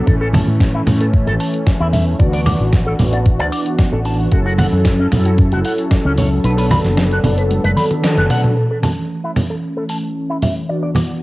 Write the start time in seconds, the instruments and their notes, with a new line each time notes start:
0.06 fingered electric bass A1, analog polysynth E3 A3 C#4, clean electric guitar A4, kick, closed hi-hat, shaker
0.21 clean electric guitar A4
0.33 clean electric guitar A5, finger snap, open hi-hat, high conga, low conga, shaker
0.47 fingered electric bass A2, shaker
0.59 kick, snare, closed hi-hat, shaker
0.74 clean electric guitar E4
0.86 fingered electric bass A2, analog polysynth E3 A3 C#4, finger snap, open hi-hat, low conga, shaker
1.01 clean electric guitar A4, closed hi-hat, shaker
1.13 kick, closed hi-hat, shaker
1.27 fingered electric bass A1, clean electric guitar A4, closed hi-hat
1.40 clean electric guitar A5, open hi-hat, shaker
1.53 closed hi-hat, shaker
1.66 kick, snare, closed hi-hat, shaker
1.80 fingered electric bass E2, clean electric guitar E4
1.93 clean electric guitar E5, open hi-hat, low conga, shaker
2.07 shaker
2.19 fingered electric bass D2, analog polysynth E3 B3 D4 F#4, clean electric guitar D5, kick, closed hi-hat, shaker
2.33 clean electric guitar D5, open hi-hat
2.46 clean electric guitar D6, finger snap, open hi-hat, high conga, low conga, shaker
2.60 fingered electric bass A1, shaker
2.72 kick, snare, closed hi-hat, shaker
2.86 clean electric guitar A4
2.98 fingered electric bass A1, analog polysynth E3 B3 D4 F#4, open hi-hat, low conga, shaker
3.13 clean electric guitar D5, closed hi-hat, shaker
3.26 kick, closed hi-hat, shaker
3.39 fingered electric bass D2, clean electric guitar D5, closed hi-hat
3.52 clean electric guitar D6, open hi-hat, shaker
3.66 closed hi-hat, shaker
3.79 kick, snare, closed hi-hat, shaker
3.92 fingered electric bass A1, clean electric guitar A4
4.05 clean electric guitar A5, open hi-hat, shaker
4.19 shaker
4.31 fingered electric bass F#1, analog polysynth F#3 C#4 E4 A4, clean electric guitar F#4, kick, closed hi-hat, shaker
4.46 clean electric guitar F#4
4.58 clean electric guitar F#5, finger snap, open hi-hat, high conga, low conga, shaker
4.72 fingered electric bass F#2, shaker
4.85 kick, snare, closed hi-hat, shaker
4.99 clean electric guitar C#4
5.10 fingered electric bass F#2, analog polysynth F#3 C#4 E4 A4, finger snap, open hi-hat, low conga, shaker
5.25 clean electric guitar F#4, closed hi-hat, shaker
5.38 kick, closed hi-hat, shaker
5.52 fingered electric bass F#1, clean electric guitar F#4, closed hi-hat
5.64 clean electric guitar F#5, open hi-hat, shaker
5.78 closed hi-hat, shaker
5.91 kick, snare, closed hi-hat, shaker
6.05 fingered electric bass C#2, clean electric guitar C#4
6.18 clean electric guitar C#5, open hi-hat, low conga, shaker
6.33 shaker
6.43 fingered electric bass B1, analog polysynth F#3 B3 D4 A4, clean electric guitar B4, closed hi-hat, shaker
6.58 clean electric guitar B4, open hi-hat
6.71 clean electric guitar B5, finger snap, open hi-hat, high conga, low conga, shaker
6.85 fingered electric bass F#1, snare, shaker
6.97 snare, closed hi-hat, shaker
7.11 clean electric guitar F#4, closed hi-hat
7.24 fingered electric bass F#1, analog polysynth F#3 B3 D4 A4, open hi-hat, low conga, shaker
7.37 clean electric guitar B4, closed hi-hat, shaker
7.51 closed hi-hat, high tom, shaker
7.64 fingered electric bass F#1, clean electric guitar B4, closed hi-hat, high tom
7.77 clean electric guitar B5, open hi-hat, high conga, shaker
7.91 closed hi-hat, mid tom, shaker
8.03 snare, closed hi-hat, mid tom, shaker
8.17 fingered electric bass F#1, clean electric guitar F#4, closed hi-hat
8.30 clean electric guitar F#5, mid tom, open hi-hat, shaker
8.44 mid tom, shaker
8.56 analog polysynth E3 A3 C#4, clean electric guitar A4, shaker
8.71 clean electric guitar A4
8.83 clean electric guitar A5, finger snap, open hi-hat, high conga, low conga, shaker
8.98 shaker
9.09 shaker
9.24 clean electric guitar E4
9.36 finger snap, open hi-hat, low conga, shaker
9.50 clean electric guitar A4, shaker
9.64 shaker
9.77 clean electric guitar A4
9.89 clean electric guitar A5, open hi-hat, shaker
10.04 shaker
10.16 shaker
10.30 clean electric guitar E4
10.42 clean electric guitar E5, open hi-hat, low conga, shaker
10.57 shaker
10.68 analog polysynth E3 B3 D4 F#4, clean electric guitar D5, shaker
10.83 clean electric guitar D5
10.95 clean electric guitar D6, finger snap, open hi-hat, high conga, low conga, shaker
11.09 shaker